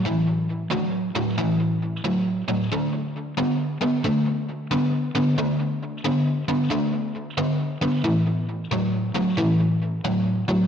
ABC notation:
X:1
M:4/4
L:1/8
Q:"Swing" 1/4=90
K:D
V:1 name="Overdriven electric guitar" clef=bass
[A,,E,]2 [A,,F,] [A,,F,] [A,,E,]2 [A,,F,] [A,,F,] | [D,A,]2 [D,B,] [D,B,] [D,A,]2 [D,B,] [D,B,] | [D,A,]2 [D,B,] [D,B,] [D,A,]2 [D,B,] [D,B,] | [A,,E,]2 [A,,F,] [A,,F,] [A,,E,]2 [A,,F,] [A,,F,] |]